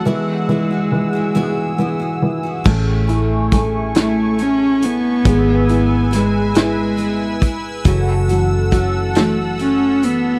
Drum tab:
CC |------|x-----|------|------|
HH |------|-xxxxx|xxxxxx|xxxxxx|
SD |------|--oo--|--oo--|---o--|
BD |------|o-o---|o----o|o-o---|